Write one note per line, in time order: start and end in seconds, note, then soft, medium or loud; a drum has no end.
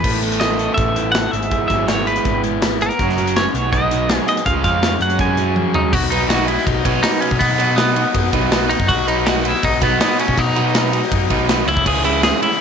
0.00 1.33 A2 medium
0.00 0.20 B4 medium
0.00 crash loud
0.04 0.67 A1 medium
0.04 0.97 A2 medium
0.04 1.32 E3 medium
0.04 1.33 B3 medium
0.04 1.33 E4 medium
0.04 1.34 A4 medium
0.04 kick loud
0.22 1.15 A3 medium
0.22 closed hi-hat medium
0.32 closed hi-hat medium
0.40 0.77 B3 medium
0.40 0.74 D#5 medium
0.40 snare loud
0.40 closed hi-hat medium
0.59 1.14 A4 medium
0.59 closed hi-hat medium
0.74 1.25 A1 medium
0.74 1.33 B3 medium
0.74 1.11 E5 medium
0.74 kick loud
0.74 closed hi-hat medium
0.96 1.33 E4 medium
0.96 closed hi-hat medium
1.12 1.33 A4 medium
1.12 1.31 F#5 loud
1.12 snare loud
1.12 closed hi-hat medium
1.31 1.65 G#1 medium
1.31 1.51 G#2 medium
1.31 2.99 G#3 medium
1.31 2.99 B3 medium
1.31 3.00 E4 medium
1.31 1.67 E5 loud
1.31 closed hi-hat medium
1.35 3.00 G#4 medium
1.42 closed hi-hat medium
1.51 2.44 G#2 medium
1.51 kick loud
1.51 closed hi-hat medium
1.68 2.17 G#1 medium
1.68 2.62 F#3 medium
1.68 1.87 E5 medium
1.68 kick medium
1.68 closed hi-hat medium
1.87 2.24 B3 medium
1.87 2.07 C#5 medium
1.87 snare loud
1.87 closed hi-hat medium
2.07 2.61 B4 medium
2.07 2.41 B4 medium
2.07 closed hi-hat medium
2.16 closed hi-hat medium
2.25 2.88 G#1 medium
2.25 2.80 B3 medium
2.25 kick loud
2.25 closed hi-hat medium
2.44 2.99 E4 medium
2.44 closed hi-hat medium
2.62 2.99 B4 medium
2.62 snare loud
2.62 closed hi-hat medium
2.81 2.99 B3 medium
2.81 3.38 A#4 medium
2.81 closed hi-hat medium
2.91 closed hi-hat medium
2.98 3.46 F#1 medium
2.98 3.54 F#2 medium
2.98 3.53 C#3 medium
2.98 3.16 F#3 medium
2.98 3.53 F#3 medium
2.98 3.55 A#3 medium
2.98 3.55 C#4 medium
2.98 3.55 F#4 medium
2.98 3.53 A#4 medium
2.98 4.45 D#5 medium
2.98 4.44 F#5 medium
2.98 3.54 C#6 medium
2.98 kick medium
2.98 closed hi-hat medium
3.09 snare soft
3.17 3.54 F#3 medium
3.17 closed hi-hat medium
3.27 closed hi-hat medium
3.36 3.55 C#4 medium
3.36 3.72 C#5 medium
3.36 snare loud
3.36 closed hi-hat medium
3.54 4.17 B1 loud
3.54 4.44 B2 medium
3.54 4.46 B2 medium
3.54 4.45 F#3 medium
3.54 4.46 B3 medium
3.54 4.46 D#4 medium
3.54 4.47 F#4 medium
3.54 4.99 G#4 medium
3.54 4.46 B5 medium
3.54 closed hi-hat medium
3.72 4.26 B3 medium
3.72 4.17 D#5 loud
3.72 kick loud
3.72 closed hi-hat medium
3.91 4.46 D#4 medium
3.91 closed hi-hat medium
4.09 4.46 G#4 medium
4.09 snare loud
4.09 closed hi-hat medium
4.17 4.28 C#5 loud
4.27 4.46 B3 medium
4.27 4.46 D#5 loud
4.27 closed hi-hat medium
4.37 closed hi-hat medium
4.44 4.61 C#2 loud
4.44 5.00 C#3 medium
4.44 5.01 C#3 medium
4.44 4.99 F3 medium
4.44 5.00 G#3 medium
4.44 5.01 C#4 medium
4.44 5.02 F4 medium
4.44 5.91 C#5 medium
4.44 5.00 F5 medium
4.44 4.63 F5 loud
4.44 5.92 C#6 medium
4.44 kick loud
4.44 closed hi-hat medium
4.64 4.96 F2 loud
4.64 5.00 G#3 medium
4.64 5.02 F5 loud
4.64 kick medium
4.64 closed hi-hat medium
4.82 5.01 C#4 medium
4.82 snare loud
4.82 closed hi-hat medium
5.00 5.63 F#2 medium
5.00 5.92 F#3 medium
5.00 5.91 F#3 medium
5.00 5.93 G#3 medium
5.00 5.94 C#4 medium
5.00 5.94 F#4 medium
5.00 5.92 G#4 medium
5.00 5.92 F#5 medium
5.00 5.20 F#5 loud
5.00 closed hi-hat medium
5.10 closed hi-hat medium
5.19 5.73 C#4 medium
5.19 5.54 G#5 loud
5.19 kick loud
5.19 closed hi-hat medium
5.37 5.93 F#4 medium
5.37 closed hi-hat medium
5.55 5.93 G#4 medium
5.55 high tom medium
5.74 5.93 C#4 medium
5.74 5.93 D#4 medium
5.74 floor tom loud
5.92 6.56 B1 loud
5.92 7.02 B2 loud
5.92 6.65 F#3 loud
5.92 6.50 B3 loud
5.92 6.49 D#4 loud
5.92 6.10 F#4 loud
5.92 6.48 F#4 loud
5.92 11.64 B4 medium
5.92 11.64 D#5 medium
5.92 11.64 F#5 medium
5.92 11.64 D#6 medium
5.92 kick loud
5.92 crash loud
6.10 6.29 F#3 medium
6.10 6.29 B3 medium
6.10 6.29 D#4 medium
6.10 6.29 D#4 loud
6.10 6.30 B4 loud
6.10 ride medium
6.29 6.54 F#3 medium
6.29 6.54 B3 medium
6.29 6.54 D#4 medium
6.29 6.48 F#4 medium
6.29 6.54 B4 medium
6.29 snare loud
6.29 ride loud
6.48 6.66 B3 medium
6.48 6.67 D#4 medium
6.48 6.66 E4 medium
6.48 6.67 F#4 medium
6.48 ride medium
6.58 snare soft
6.66 6.82 B1 medium
6.66 7.03 F#3 medium
6.66 6.85 B3 medium
6.66 6.85 D#4 medium
6.66 6.84 D#4 medium
6.66 6.83 F#4 medium
6.66 kick loud
6.66 ride loud
6.83 7.01 B1 loud
6.83 7.02 F#3 medium
6.83 7.03 B3 medium
6.83 7.02 C#4 medium
6.83 7.04 D#4 medium
6.83 7.03 D#4 medium
6.83 7.04 F#4 medium
6.83 7.03 B4 loud
6.83 kick medium
6.83 ride loud
7.02 7.39 B2 loud
7.02 7.40 F#3 loud
7.02 7.28 F#3 medium
7.02 7.23 B3 loud
7.02 7.28 B3 medium
7.02 7.20 D#4 loud
7.02 7.21 D#4 loud
7.02 7.28 D#4 medium
7.02 7.20 F#4 loud
7.02 7.28 B4 medium
7.02 snare loud
7.02 ride loud
7.20 7.40 B3 medium
7.20 7.39 C#4 medium
7.20 7.41 D#4 medium
7.20 7.41 F#4 medium
7.20 ride medium
7.31 7.39 B2 medium
7.31 kick loud
7.39 8.50 B2 loud
7.39 8.03 B2 loud
7.39 8.13 F#3 loud
7.39 7.74 B3 loud
7.39 7.97 B3 loud
7.39 7.96 D#4 loud
7.39 7.95 F#4 loud
7.39 kick loud
7.39 ride loud
7.59 7.76 F#3 medium
7.59 7.77 B3 medium
7.59 7.77 D#4 loud
7.59 7.77 B4 loud
7.59 ride medium
7.76 8.02 F#3 medium
7.76 8.72 B3 medium
7.76 8.02 B3 medium
7.76 8.02 D#4 medium
7.76 8.02 B4 medium
7.76 snare loud
7.76 ride loud
7.95 8.14 B3 medium
7.95 8.15 D#4 medium
7.95 8.16 F#4 medium
7.95 ride medium
8.13 8.30 F#2 loud
8.13 8.50 F#3 medium
8.13 8.34 B3 medium
8.13 8.33 D#4 medium
8.13 8.31 F#4 medium
8.13 kick loud
8.13 ride loud
8.32 8.73 B1 loud
8.32 8.51 F#3 medium
8.32 8.51 B3 medium
8.32 8.52 D#4 medium
8.32 8.52 D#4 loud
8.32 8.52 F#4 medium
8.32 8.52 B4 loud
8.32 kick medium
8.32 ride medium
8.50 8.87 B2 loud
8.50 8.88 F#3 loud
8.50 8.76 F#3 medium
8.50 8.71 B3 loud
8.50 8.76 B3 medium
8.50 8.70 D#4 loud
8.50 8.76 D#4 medium
8.50 8.68 F#4 loud
8.50 8.76 B4 medium
8.50 snare loud
8.50 ride loud
8.69 8.88 B3 medium
8.69 8.89 D#4 loud
8.69 8.89 D#4 medium
8.69 8.89 F#4 medium
8.69 ride medium
8.80 8.87 F#2 loud
8.80 kick medium
8.87 9.52 B1 loud
8.87 9.62 B2 loud
8.87 9.61 F#3 loud
8.87 9.45 B3 loud
8.87 9.45 D#4 loud
8.87 9.06 F#4 loud
8.87 9.42 F#4 loud
8.87 kick medium
8.87 ride loud
9.07 9.26 F#3 medium
9.07 9.26 B3 medium
9.07 9.27 D#4 medium
9.07 9.26 D#4 medium
9.07 9.26 B4 loud
9.07 ride medium
9.26 9.51 F#3 medium
9.26 9.51 B3 medium
9.26 9.51 D#4 medium
9.26 9.45 F#4 loud
9.26 9.51 B4 medium
9.26 snare loud
9.26 ride loud
9.44 9.62 B3 medium
9.44 9.64 D#4 medium
9.44 9.64 E4 loud
9.44 9.63 F#4 medium
9.44 ride medium
9.54 snare soft
9.62 9.79 B1 loud
9.62 9.99 F#3 medium
9.62 9.82 B3 medium
9.62 9.82 D#4 medium
9.62 9.81 D#4 loud
9.62 9.80 F#4 medium
9.62 kick loud
9.62 ride loud
9.81 9.97 B1 loud
9.81 9.99 F#3 medium
9.81 10.00 B3 medium
9.81 9.99 B3 medium
9.81 10.00 D#4 medium
9.81 10.01 D#4 medium
9.81 10.01 F#4 medium
9.81 10.01 B4 loud
9.81 kick medium
9.81 ride loud
9.99 10.35 B2 loud
9.99 10.36 F#3 loud
9.99 10.25 F#3 medium
9.99 10.19 B3 loud
9.99 10.25 B3 medium
9.99 10.20 B3 medium
9.99 10.25 D#4 medium
9.99 10.19 D#4 loud
9.99 10.17 F#4 loud
9.99 10.25 B4 medium
9.99 snare loud
9.99 ride loud
10.18 10.37 B3 medium
10.18 10.39 C#4 loud
10.18 10.38 D#4 medium
10.18 10.38 F#4 medium
10.18 ride medium
10.28 10.36 B2 medium
10.28 kick medium
10.36 11.11 B2 loud
10.36 11.01 B2 loud
10.36 11.10 F#3 loud
10.36 10.93 B3 loud
10.36 10.93 D#4 loud
10.36 11.72 D#4 loud
10.36 10.91 F#4 loud
10.36 kick loud
10.36 ride loud
10.56 10.74 F#3 medium
10.56 10.74 B3 medium
10.56 10.74 D#4 medium
10.56 10.75 B4 loud
10.56 ride medium
10.75 10.99 F#3 medium
10.75 10.99 B3 medium
10.75 10.99 D#4 medium
10.75 11.00 B4 medium
10.75 snare loud
10.75 ride loud
10.92 11.11 B3 medium
10.92 11.12 D#4 medium
10.92 11.12 F#4 medium
10.92 ride medium
11.03 snare soft
11.11 11.28 F#2 loud
11.11 11.47 F#3 medium
11.11 11.31 B3 medium
11.11 11.30 D#4 medium
11.11 11.28 F#4 medium
11.11 kick loud
11.11 ride loud
11.30 11.62 B1 medium
11.30 11.47 F#3 medium
11.30 11.48 B3 medium
11.30 11.49 D#4 medium
11.30 11.48 D#4 medium
11.30 11.49 F#4 medium
11.30 11.49 B4 loud
11.30 kick medium
11.30 ride medium
11.48 11.66 B2 loud
11.48 11.67 F#3 medium
11.48 11.66 F#3 loud
11.48 11.68 B3 medium
11.48 11.67 B3 loud
11.48 11.68 D#4 medium
11.48 11.67 D#4 loud
11.48 11.66 F#4 loud
11.48 11.68 B4 medium
11.48 snare loud
11.48 ride loud
11.67 12.31 C#2 loud
11.67 11.85 C#3 medium
11.67 11.86 E3 medium
11.67 11.86 G#3 medium
11.67 11.87 C#4 loud
11.67 11.87 E4 medium
11.67 11.87 E4 loud
11.67 12.61 C#5 medium
11.67 12.61 E5 medium
11.67 12.61 G#5 medium
11.67 12.61 D#6 medium
11.67 ride medium
11.77 kick medium
11.85 12.60 C#3 loud
11.85 12.60 E3 medium
11.85 12.43 G#3 loud
11.85 12.41 C#4 loud
11.85 12.40 E4 loud
11.85 12.05 G#4 loud
11.85 kick loud
11.85 crash loud
12.04 12.22 G#3 medium
12.04 12.22 C#4 medium
12.04 12.22 E4 loud
12.04 12.23 E4 loud
12.04 12.23 G#4 loud
12.04 ride medium
12.23 12.48 G#3 medium
12.23 12.48 C#4 medium
12.23 12.48 E4 medium
12.23 12.42 G#4 loud
12.23 12.48 G#4 medium
12.23 snare loud
12.23 ride loud
12.41 12.61 G#3 medium
12.41 12.61 C#4 medium
12.41 12.61 E4 medium
12.41 12.60 E4 medium
12.41 ride medium
12.52 snare soft